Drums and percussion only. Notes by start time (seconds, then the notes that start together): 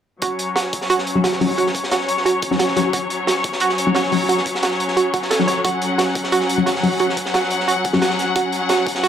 0.22 kick, closed hi-hat
0.39 closed hi-hat
0.56 snare, closed hi-hat
0.73 kick, closed hi-hat
0.81 snare
0.90 closed hi-hat
0.98 snare
1.07 closed hi-hat
1.24 snare, closed hi-hat
1.32 snare
1.41 open hi-hat
1.58 closed hi-hat
1.67 snare
1.75 kick, closed hi-hat
1.84 snare
1.91 snare, closed hi-hat
2.00 snare
2.09 closed hi-hat
2.17 snare
2.26 closed hi-hat
2.42 kick, closed hi-hat
2.52 snare
2.59 snare, closed hi-hat
2.68 snare
2.76 snare, closed hi-hat
2.93 kick, closed hi-hat
3.10 closed hi-hat
3.27 snare, closed hi-hat
3.44 kick, closed hi-hat
3.53 snare
3.60 closed hi-hat
3.69 snare
3.78 closed hi-hat
3.95 snare, closed hi-hat
4.03 snare
4.12 open hi-hat
4.29 closed hi-hat
4.38 snare
4.46 kick, closed hi-hat
4.55 snare
4.63 snare, closed hi-hat
4.71 snare
4.80 closed hi-hat
4.88 snare
4.97 closed hi-hat
5.14 kick, closed hi-hat
5.22 snare
5.31 snare, closed hi-hat
5.39 snare
5.48 snare, closed hi-hat
5.65 kick, closed hi-hat
5.82 closed hi-hat
5.99 snare, closed hi-hat
6.15 kick, closed hi-hat
6.24 snare
6.32 closed hi-hat
6.41 snare
6.49 closed hi-hat
6.66 snare, closed hi-hat
6.75 snare
6.83 open hi-hat
6.99 closed hi-hat
7.09 snare
7.17 kick, closed hi-hat
7.26 snare
7.34 snare, closed hi-hat
7.43 snare
7.51 closed hi-hat
7.60 snare
7.68 closed hi-hat
7.85 kick, closed hi-hat
7.93 snare
8.02 snare, closed hi-hat
8.10 snare
8.19 snare, closed hi-hat
8.36 kick, closed hi-hat
8.53 closed hi-hat
8.69 snare, closed hi-hat
8.87 kick, closed hi-hat
8.95 snare
9.04 closed hi-hat